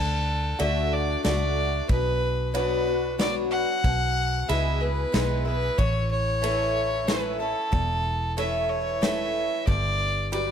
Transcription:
Already playing: fingered electric bass D2, steel-string acoustic guitar D3, fiddle A4
0.59 fingered electric bass D2, steel-string acoustic guitar D3 A3 D4 F#4, honky-tonk piano F#4 A4 D5, fiddle E5, ride
0.93 fiddle D5
1.24 fingered electric bass C#2, steel-string acoustic guitar A3 D4 F#4, honky-tonk piano F#4 A4 D5, fiddle D5, snare, ride
1.89 fingered electric bass B1, steel-string acoustic guitar B2, fiddle B4, kick, ride
2.54 steel-string acoustic guitar F#3 B3 D4 F#4, honky-tonk piano F#4 B4 D5, fiddle B4, ride
2.87 steel-string acoustic guitar D4 F#4
3.18 steel-string acoustic guitar F#3 B3 D4 F#4, honky-tonk piano F#4 B4 D5, fiddle D5, snare, ride
3.51 fiddle F#5
3.84 fingered electric bass B1, steel-string acoustic guitar B2, kick, ride
4.48 fingered electric bass C#2, steel-string acoustic guitar E3 G#3 B3 E4, honky-tonk piano E4 G#4 B4, fiddle E5, ride
4.80 steel-string acoustic guitar B3 E4, fiddle B4
5.12 fingered electric bass B1, steel-string acoustic guitar E3 G#3 B3 E4, honky-tonk piano E4 G#4 B4, snare, ride
5.45 steel-string acoustic guitar B3 E4, fiddle B4
5.78 fingered electric bass A1, steel-string acoustic guitar A2, fiddle C#5, kick, ride
6.11 fiddle C#5
6.42 steel-string acoustic guitar E3 A3 C#4 E4, honky-tonk piano E4 A4 C#5, ride
7.07 steel-string acoustic guitar E3 A3 C#4 E4, honky-tonk piano E4 A4 C#5, fiddle B4, snare, ride
7.40 steel-string acoustic guitar C#4 E4, fiddle A4
7.72 fingered electric bass E1, steel-string acoustic guitar E2, kick, ride
8.37 steel-string acoustic guitar E3 A3 C#4 E4, honky-tonk piano E4 A4 C#5, fiddle E5, ride
8.69 fiddle C#5
9.02 steel-string acoustic guitar E3 A3 C#4 E4, honky-tonk piano E4 A4 C#5, fiddle E5, snare, ride
9.67 fingered electric bass G1, steel-string acoustic guitar G2, fiddle D5, kick, ride
10.32 steel-string acoustic guitar F#2, honky-tonk piano G4 B4 D5, fiddle D5, ride

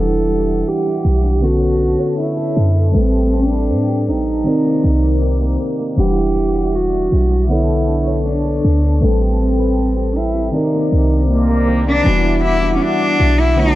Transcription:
Already playing: 808-style bass E1, tine electric piano E3 G3 D4 F#5, nylon-string guitar E3 D4, analog synth pad G4 E5 F#5 D6, cello A4
0.10 nylon-string guitar D4
0.29 nylon-string guitar G3
0.67 nylon-string guitar G3, cello G4
0.86 nylon-string guitar D4
1.04 808-style bass B1, nylon-string guitar G3
1.24 nylon-string guitar D4
1.40 tine electric piano D3 B3 C#4, nylon-string guitar B3, cello F#4, analog synth pad A4 C#5 A5 C#6
1.44 tine electric piano A4
1.61 nylon-string guitar A4
1.80 nylon-string guitar D4
1.99 nylon-string guitar C#5
2.18 nylon-string guitar D4, cello E4
2.37 nylon-string guitar A4
2.56 808-style bass F#2, nylon-string guitar D4
2.75 nylon-string guitar A4
2.92 808-style bass A1, tine electric piano G3 C4 B4, nylon-string guitar A3, cello C4, analog synth pad G5
2.96 tine electric piano A4
3.13 nylon-string guitar G4
3.32 nylon-string guitar C4, cello D4
3.51 nylon-string guitar B4
3.70 808-style bass A2, nylon-string guitar C4
3.89 nylon-string guitar G4
4.08 808-style bass A1, nylon-string guitar C4, cello D#4
4.26 nylon-string guitar G4
4.44 nylon-string guitar C3, tine electric piano D#3 C4 D5, analog synth pad D#4 C5 A#5 D6
4.48 tine electric piano A#4
4.65 nylon-string guitar A#3
4.84 808-style bass C2, nylon-string guitar D#3
5.22 nylon-string guitar D#3
5.41 nylon-string guitar A#3
5.60 nylon-string guitar D#3
5.79 nylon-string guitar A#3
5.96 808-style bass E1, tine electric piano E3 G3 D4, nylon-string guitar E3, analog synth pad G3 E5 F#5 D6, cello G4
6.00 tine electric piano F#5
6.17 nylon-string guitar D4
6.36 nylon-string guitar G3
6.55 nylon-string guitar F#4
6.74 nylon-string guitar G3, cello F#4
6.93 nylon-string guitar D4
7.12 808-style bass B1, nylon-string guitar G3
7.31 nylon-string guitar D4
7.48 tine electric piano D3 B3 A4 C#5, nylon-string guitar B3, analog synth pad D4 A4 A5 C#6, cello E4
7.69 nylon-string guitar A4
7.87 nylon-string guitar D4
8.07 nylon-string guitar C#5
8.26 nylon-string guitar D4, cello D4
8.45 nylon-string guitar A4
8.64 808-style bass D2, nylon-string guitar D4
8.83 nylon-string guitar A4
9.00 808-style bass A1, tine electric piano G3 C4 B4, nylon-string guitar A3, cello C4, analog synth pad G5
9.04 tine electric piano A4
9.21 nylon-string guitar G4
9.40 nylon-string guitar C4
9.59 nylon-string guitar B4
9.78 nylon-string guitar C4
9.97 nylon-string guitar G4
10.16 nylon-string guitar C4, cello E4
10.35 nylon-string guitar G4
10.52 nylon-string guitar C3, tine electric piano D#3 C4 A#4 D5, cello D#4, analog synth pad C5 D5 A#5 D6
10.73 nylon-string guitar A#3
10.92 808-style bass C2, nylon-string guitar D#3
11.11 nylon-string guitar D4
11.30 nylon-string guitar D#3, cello A#3
11.49 nylon-string guitar A#3
11.68 nylon-string guitar D#3
11.87 nylon-string guitar A#3, cello D4
12.04 808-style bass E1, tine electric piano E3 G3 B3 D4, nylon-string guitar E3, analog synth pad G3 E5 F#5 D6
12.08 tine electric piano F#4
12.25 nylon-string guitar D4
12.43 cello E4, nylon-string guitar F#4
12.63 nylon-string guitar D4
12.76 cello C#4
12.81 cello D4, nylon-string guitar F#4
13.00 nylon-string guitar D4
13.19 808-style bass B1, nylon-string guitar F#4
13.38 nylon-string guitar D4, cello E4
13.56 tine electric piano D3 A3 B3 C#5, nylon-string guitar B3, analog synth pad D4 B4 A5 C#6, cello D4
13.60 tine electric piano F4
13.66 tine electric piano F#4

